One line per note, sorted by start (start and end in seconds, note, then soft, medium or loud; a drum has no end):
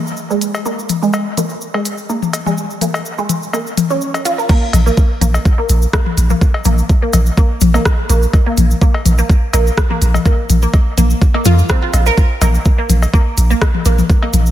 0.07 cabasa soft
0.17 cabasa soft
0.30 0.38 G#3 medium
0.30 cabasa soft
0.41 open hi-hat medium
0.41 cabasa medium
0.54 cowbell medium
0.54 cabasa soft
0.66 0.72 A#3 medium
0.66 cabasa soft
0.79 cabasa soft
0.89 open hi-hat medium
0.89 high tom soft
0.89 cabasa medium
1.02 1.10 G#3 medium
1.02 cabasa soft
1.13 cowbell medium
1.13 cabasa soft
1.37 1.44 A#3 medium
1.37 open hi-hat medium
1.37 low conga medium
1.37 cabasa medium
1.49 cabasa soft
1.61 cabasa soft
1.74 1.82 G#3 medium
1.74 cowbell medium
1.85 open hi-hat medium
1.85 cabasa medium
1.98 cabasa soft
2.09 2.16 A#3 medium
2.09 cabasa soft
2.22 high tom soft
2.22 cabasa soft
2.33 open hi-hat medium
2.33 cowbell medium
2.33 cabasa medium
2.46 2.54 G#3 medium
2.46 high tom soft
2.46 cabasa soft
2.58 cabasa soft
2.70 cabasa soft
2.81 2.88 A#3 medium
2.81 open hi-hat medium
2.81 high tom soft
2.81 cabasa medium
2.94 cowbell medium
2.94 cabasa soft
3.06 cabasa soft
3.18 3.26 G#3 medium
3.18 cabasa soft
3.29 open hi-hat medium
3.29 low conga medium
3.29 cabasa medium
3.43 cabasa soft
3.53 3.59 A#3 medium
3.53 cowbell medium
3.53 cabasa soft
3.67 cabasa soft
3.77 open hi-hat medium
3.77 high tom medium
3.77 cabasa medium
3.90 3.96 C#4 medium
3.90 cabasa soft
4.01 cabasa soft
4.14 open hi-hat soft
4.14 cowbell medium
4.14 cabasa soft
4.25 4.32 F4 loud
4.25 open hi-hat medium
4.25 cabasa medium
4.38 4.42 A#4 medium
4.38 cabasa soft
4.49 4.56 A#3 medium
4.49 kick loud
4.49 crash loud
4.49 cabasa soft
4.73 4.90 A#1 loud
4.73 open hi-hat loud
4.73 high tom medium
4.73 cowbell medium
4.73 cabasa medium
4.86 4.92 A#3 medium
4.86 cabasa soft
4.97 kick loud
4.97 cabasa soft
5.21 5.38 A#1 medium
5.21 5.28 A#3 medium
5.21 open hi-hat medium
5.21 low conga loud
5.21 cabasa medium
5.34 cowbell medium
5.34 cabasa soft
5.45 kick loud
5.45 cabasa soft
5.58 5.64 A#3 medium
5.69 5.86 A#1 medium
5.69 open hi-hat medium
5.69 cabasa loud
5.82 cabasa medium
5.93 6.00 A#3 medium
5.93 kick loud
5.93 cross-stick loud
5.93 cowbell medium
5.93 cabasa soft
6.06 high tom medium
6.17 6.34 A#1 loud
6.17 open hi-hat medium
6.17 cabasa loud
6.30 6.36 A#3 medium
6.30 high tom medium
6.30 cabasa soft
6.41 kick loud
6.41 cabasa soft
6.54 cowbell medium
6.64 6.82 A#1 loud
6.64 6.72 A#3 medium
6.64 open hi-hat loud
6.64 high tom medium
6.64 cabasa medium
6.78 cabasa medium
6.89 kick loud
6.89 cabasa soft
7.02 7.08 A#3 medium
7.13 7.30 A#1 medium
7.13 open hi-hat medium
7.13 cowbell medium
7.13 low conga loud
7.13 cabasa medium
7.26 cabasa medium
7.37 7.44 A#3 medium
7.37 kick loud
7.37 cabasa soft
7.61 7.78 A#1 medium
7.61 open hi-hat medium
7.61 high tom medium
7.61 cabasa loud
7.74 7.80 A#3 medium
7.74 cowbell medium
7.74 cabasa soft
7.85 kick loud
7.85 cross-stick loud
7.85 cabasa soft
8.09 8.26 A#1 loud
8.09 8.16 A#3 medium
8.09 open hi-hat loud
8.09 cabasa medium
8.22 cabasa medium
8.33 kick loud
8.33 cowbell medium
8.33 cabasa soft
8.46 8.52 A#3 medium
8.57 8.74 A#1 loud
8.57 open hi-hat loud
8.57 high tom medium
8.57 cabasa medium
8.71 cabasa medium
8.81 8.88 A#3 medium
8.81 kick loud
8.81 cabasa soft
8.94 cowbell medium
9.05 9.22 A#1 medium
9.05 open hi-hat loud
9.05 low conga medium
9.05 cabasa medium
9.18 9.24 A#3 medium
9.18 cabasa medium
9.30 kick loud
9.30 cabasa soft
9.53 9.70 A#1 medium
9.53 9.60 A#3 medium
9.53 open hi-hat loud
9.53 cowbell medium
9.53 cabasa loud
9.67 cabasa medium
9.78 kick loud
9.78 cross-stick loud
9.78 cabasa soft
9.90 9.96 A#3 medium
9.90 high tom medium
10.02 10.18 A#1 loud
10.02 open hi-hat medium
10.02 cabasa medium
10.14 high tom medium
10.14 cowbell medium
10.14 cabasa medium
10.25 10.32 A#3 medium
10.25 kick loud
10.25 cabasa soft
10.49 10.66 A#1 loud
10.49 open hi-hat loud
10.49 high tom medium
10.49 cabasa loud
10.62 10.68 A#3 medium
10.62 cabasa medium
10.73 kick loud
10.73 cowbell medium
10.73 cabasa soft
10.97 11.14 A#1 medium
10.97 11.04 A#3 medium
10.97 open hi-hat medium
10.97 low conga medium
10.97 cabasa medium
11.10 cabasa medium
11.22 kick loud
11.22 cabasa soft
11.34 11.40 A#3 medium
11.34 cowbell medium
11.45 11.62 F2 loud
11.45 11.52 F4 loud
11.45 open hi-hat loud
11.45 high tom medium
11.45 cabasa loud
11.59 cabasa medium
11.69 11.79 C4 medium
11.69 kick loud
11.69 cross-stick loud
11.69 cabasa soft
11.82 11.86 F4 medium
11.93 12.10 A#1 loud
11.93 open hi-hat loud
11.93 cowbell medium
11.93 cabasa medium
12.06 12.12 A#4 loud
12.06 cabasa medium
12.17 kick loud
12.17 cabasa soft
12.41 12.58 A#1 loud
12.41 12.48 A#3 medium
12.41 open hi-hat medium
12.41 high tom medium
12.41 cowbell medium
12.41 cabasa loud
12.55 cabasa medium
12.65 kick loud
12.65 cabasa soft
12.78 12.86 A#3 medium
12.89 13.06 A#1 medium
12.89 open hi-hat medium
12.89 low conga medium
12.89 cabasa medium
13.02 cowbell medium
13.02 cabasa medium
13.13 13.20 A#3 medium
13.13 kick loud
13.13 cabasa soft
13.37 13.54 A#1 medium
13.37 open hi-hat medium
13.37 cabasa loud
13.50 13.58 A#3 medium
13.50 cabasa medium
13.62 kick loud
13.62 cross-stick loud
13.62 cowbell medium
13.62 cabasa soft
13.75 high tom medium
13.85 14.02 A#1 loud
13.85 13.92 A#3 medium
13.85 open hi-hat medium
13.85 cabasa medium
13.98 high tom medium
13.98 cabasa medium
14.10 kick loud
14.10 cabasa soft
14.22 14.30 A#3 medium
14.22 cowbell medium
14.33 14.50 A#1 loud
14.33 open hi-hat medium
14.33 high tom medium
14.33 cabasa medium
14.46 cabasa soft